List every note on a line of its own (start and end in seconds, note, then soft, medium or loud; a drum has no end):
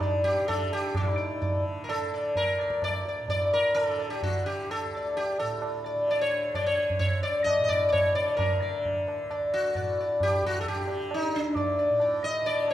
0.00 2.62 D2 medium
0.00 0.95 A2 medium
0.00 0.41 D3 medium
0.00 0.23 D5 soft
0.00 tabla na medium
0.00 tabla ge medium
0.24 0.46 G4 medium
0.24 tabla ge soft
0.41 1.51 D3 medium
0.48 0.72 A4 medium
0.48 tabla na medium
0.48 tabla ge medium
0.72 0.96 G4 loud
0.72 tabla te medium
0.95 3.19 A2 medium
0.95 1.63 D#4 medium
0.95 1.16 D5 soft
0.95 tabla na medium
0.95 tabla ge medium
1.17 1.40 D5 soft
1.42 1.63 D5 soft
1.42 tabla tin medium
1.42 tabla ge medium
1.51 2.05 D3 medium
1.84 1.89 A#4 medium
1.89 2.33 A4 medium
1.89 tabla na medium
2.05 3.75 D3 medium
2.14 2.35 D5 soft
2.35 2.84 A#4 medium
2.35 tabla tin medium
2.35 tabla ge medium
2.58 4.84 D2 medium
2.58 2.82 D5 soft
2.58 tabla na medium
2.70 tabla ke medium
2.82 3.07 D5 medium
2.82 tabla na medium
2.82 tabla ge medium
3.05 3.29 D5 soft
3.05 tabla te medium
3.20 5.40 A2 medium
3.28 3.53 D5 medium
3.28 tabla tin medium
3.28 tabla ge medium
3.53 3.75 A#4 medium
3.75 4.30 D3 medium
3.75 3.86 A#4 medium
3.75 tabla na medium
3.86 4.10 A4 medium
3.99 4.21 D5 soft
3.99 tabla na medium
4.10 4.23 G4 medium
4.23 4.46 F#4 medium
4.23 tabla tin medium
4.23 tabla ge medium
4.30 5.95 D3 medium
4.46 4.70 G4 medium
4.71 5.16 A4 medium
4.71 tabla na medium
4.84 7.03 D2 medium
4.97 5.17 D5 soft
5.15 5.39 G4 medium
5.15 tabla tin medium
5.39 7.58 A2 medium
5.39 5.83 A4 medium
5.39 tabla na medium
5.62 tabla na medium
5.86 6.07 D5 soft
5.95 6.49 D3 medium
6.09 6.21 D5 medium
6.09 tabla tin medium
6.21 6.55 C#5 medium
6.49 8.13 D3 medium
6.54 6.66 D5 medium
6.54 tabla na medium
6.54 tabla ge medium
6.66 6.98 C#5 medium
6.78 tabla te medium
6.90 tabla ge medium
6.99 7.23 C#5 medium
6.99 tabla tin medium
6.99 tabla ge medium
7.03 9.23 D2 medium
7.23 7.47 D5 medium
7.44 7.63 D#5 medium
7.44 tabla na medium
7.44 tabla ge medium
7.58 9.74 A2 medium
7.64 7.70 D#5 medium
7.69 7.87 D5 medium
7.69 tabla ge soft
7.89 8.15 C#5 medium
7.89 7.92 D5 medium
7.93 tabla na medium
7.93 tabla ge medium
8.13 8.69 D3 medium
8.13 8.36 D5 medium
8.13 tabla te medium
8.37 9.02 A#4 medium
8.37 tabla na medium
8.37 tabla ge medium
8.62 8.83 D5 soft
8.69 10.31 D3 medium
8.85 tabla tin medium
8.85 tabla ge medium
9.08 tabla na medium
9.23 11.36 D2 medium
9.31 9.51 D5 soft
9.31 tabla na medium
9.54 10.17 F#4 medium
9.75 11.89 A2 medium
9.75 9.97 D5 soft
9.75 tabla tin medium
9.75 tabla ge medium
10.00 10.20 D5 soft
10.20 10.45 G4 medium
10.20 tabla na medium
10.20 tabla ge medium
10.31 10.83 D3 medium
10.43 10.60 F#4 medium
10.43 tabla ge medium
10.61 10.66 A4 medium
10.61 tabla tin medium
10.61 tabla ge medium
10.68 11.13 G4 medium
10.83 12.42 D3 medium
10.88 tabla na medium
11.11 11.36 D#4 medium
11.11 tabla na medium
11.36 12.73 D2 medium
11.36 11.98 D4 medium
11.56 11.77 D5 soft
11.56 tabla tin medium
11.56 tabla ge medium
11.79 11.99 D5 soft
11.90 12.73 A2 medium
12.00 12.22 D5 soft
12.00 tabla na medium
12.24 12.47 D#5 loud
12.42 12.73 D3 medium
12.42 12.67 D5 medium
12.42 tabla tin medium
12.68 tabla na medium